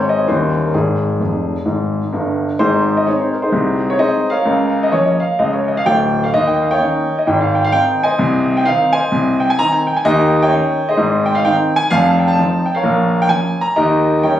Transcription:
Already playing: G#1 G#2 G#3 C4 D#4 C#5
0.09 D#5
0.19 C#5
0.28 D#2 D#3 G3 C#4 E4 C5
0.65 A#4
0.74 G#1 G#2 G#4
1.20 F1 F2
1.66 G#1 G#2
2.13 G1 G2
2.59 G#1 G#2 D#4 G#4 C5
2.97 D#5
3.07 G#3 C4 D#4 C#5
3.20 C5
3.33 A#4
3.42 D#4 G#4 C5
3.52 C2 C3
3.90 C#5
3.99 G#3 C4 D#4 G#4 C5 D#5
4.30 A#4 C#5 F5
4.45 C#2 C#3
4.83 D#5
4.92 F3 A#3 C#4 C#5
5.05 D#5
5.20 F5
5.39 C#2 C#3 D#5
5.53 C#5
5.68 D#5
5.77 F5
5.86 D1 D2 G5
6.24 F5
6.33 D#2 D#3 D#5
6.47 G5
6.61 F5
6.71 C#5 D#5 G5
6.79 D#3 A#3 C#4
7.19 D#5
7.27 G#1 G#2 G5
7.41 F5
7.55 G5
7.64 F5
7.72 D#3 C4 D#4 G5
8.03 C5 D#5 G#5
8.18 C2 C3
8.57 G5
8.65 D#3 C4 D#4 F5
8.93 C5 D#5 G#5
9.11 C2 C3
9.40 G5
9.50 G#5
9.59 D#3 C4 D#4 A#5
9.73 G#5
9.87 G5
9.96 G#5
10.05 D#2 D#3 G4 A#4 D#5
10.43 C#5 D#5 G5
10.52 D#3 C#4 D#4
10.89 G#4 C5 D#5
10.97 G#1 G#2
11.26 G5
11.35 F5
11.45 D#3 C4 D#4 G5
11.76 G#5
11.90 F1 F2 F5
12.05 A5
12.19 G5
12.28 A5
12.39 F3 C4 D#4
12.66 G5
12.75 A#4 C#5 F5
12.83 A#1 A#2
13.22 G5
13.29 F3 A#3 C#4 G#5
13.61 A#5
13.76 D#2 D#3 G4 A#4 D#5
14.23 G3 A#3 C#4 C#5 D#5 G5

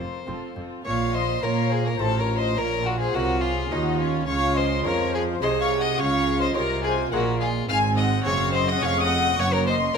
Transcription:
Already playing: C4 F4 A#4 C5
0.00 F2 A#4
0.26 F1 F2 C4 F4 A4
0.56 F1 F2 C4 F4 A4
0.84 A#1 A#2 F4 C#5 F5 C#6
1.13 C5 D#5 C6
1.42 A#2 A#3 C#4 F4 A#4 C#5 A#5
1.71 G#4 C5 G#5
1.85 A#4 C#5 A#5
1.99 A1 A2 C4 F4 A4 C5 A5
2.18 A#4 C#5 A#5
2.37 C5 D#5 C6
2.56 A#1 A#2 F4 A#4 C#5 A#5
2.85 F#4 A#4 F#5
2.99 G#4 C5 G#5
3.11 C2 C3 A#3 F#4 F#5
3.15 C#4 F4 A#4
3.40 F4 G#4 F5
3.70 D#2 D#3 A#3 C#4 D#4 F4 F#4 D#5
3.98 C#4 F4 C#5
4.27 C#2 C#3 F4 C#5 F5 C#6
4.56 C5 D#5 C6
4.84 F2 F3 G#3 C#4 F4 A#4 C#5 A#5
5.13 G#4 C5 G#5
5.41 C2 C3 G#3 D#4 G#4 C5 D#5 C6
5.61 C#5 F5 C#6
5.79 D#5 F#5 D#6
5.98 C#2 C#3 F4 C#5 F5 C#6
6.41 C5 D#5 C6
6.54 C2 C3 G#3 F4 G#4 A#4 C#5 A#5
6.84 G#4 C5 G#5
7.12 A#1 A#2 G#3 F4 F#4 G#4 A#4 F#5
7.40 F4 G#4 F5
7.68 G#1 G#2 C4 F5 G#5 F6
7.96 D#5 F#5 D#6
8.24 F#1 F#2 G#3 C4 G#4 C#5 F5 C#6
8.53 C5 D#5 C6
8.68 D#5 F#5 D#6
8.81 F1 F2 G#3 C#4 G#4 C#5 F5 C#6
9.00 D#5 F#5 D#6
9.09 C4
9.37 F#1 F#2 A#3 C#5 F#5 C#6
9.53 A#4 C#5 A#5
9.66 C5 D#5 C6
9.94 F1 F2 A#4

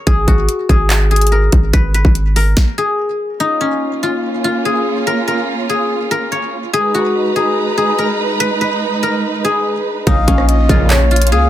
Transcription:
Already playing: F4 A#4 C#5
0.07 G#1 G#4, kick, closed hi-hat
0.28 G#1 F#4, kick, closed hi-hat
0.49 closed hi-hat
0.69 G#1 G#4, kick, closed hi-hat
0.90 clap, closed hi-hat
1.11 G#4, closed hi-hat
1.16 closed hi-hat
1.21 closed hi-hat
1.27 closed hi-hat
1.32 A#4
1.52 G#1, kick, closed hi-hat
1.73 G#1 B4, kick, closed hi-hat
1.94 B4, closed hi-hat
2.05 G#1, kick
2.15 closed hi-hat
2.36 A#4, open hi-hat
2.57 kick, snare
2.78 G#4
3.40 A#3 C#4 D#4 F4
3.61 C#4
4.03 F4
4.44 F4
4.65 G#4
5.07 A#4
5.28 A#4
5.69 G#4
6.11 A#4
6.32 C#5
6.73 G#3 D#4 G#4 B4 A#5
6.94 F#4
7.36 G#4
7.78 G#4
7.98 A#4
8.40 B4
8.61 B4
9.03 A#4
9.44 G#4
10.07 A#1 F2 A#2 C#3 A#3 C#4 D#4 F4 F5, kick, closed hi-hat
10.28 A#1 C#4, kick, closed hi-hat
10.38 cross-stick
10.49 D#5, closed hi-hat
10.69 A#1 F2 A#2 C#3 F4, kick, closed hi-hat
10.90 C#5, clap, closed hi-hat
11.11 F4, closed hi-hat
11.16 closed hi-hat
11.22 closed hi-hat
11.27 closed hi-hat
11.32 C#2 G#4 F5

